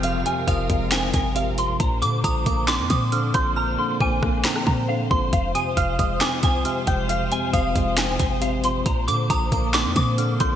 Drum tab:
HH |x-x-x-x-x-x-x-x-|x-x-x-x-x-x-x-x-|----------------|x-x-x-x-x-x-x-x-|
SD |--------o-------|--------o-------|------r-or------|--------o-------|
BD |----o-o---o-----|o---o-o---o---o-|----o-o---o---o-|o---o-o---o---o-|

HH |x-x-x-x-x-x-x-x-|x-x-x-x-x-x-x-x-|
SD |--------o-------|--------o-------|
BD |----o-o---o-----|o---o-o---o---o-|